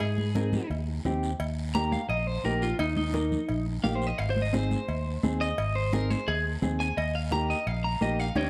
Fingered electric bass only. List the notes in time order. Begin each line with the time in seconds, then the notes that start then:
0.01 G#2
0.70 D#2
1.05 D#2
1.40 D#2
2.09 A#1
2.44 A#1
2.79 D#2
3.49 A#1
3.84 A#1
4.19 G#1
4.88 D#2
5.24 D#2
5.58 G#1
6.28 D#2
6.63 D#2
6.97 D#2
7.67 A#1
8.01 A#1
8.36 D#2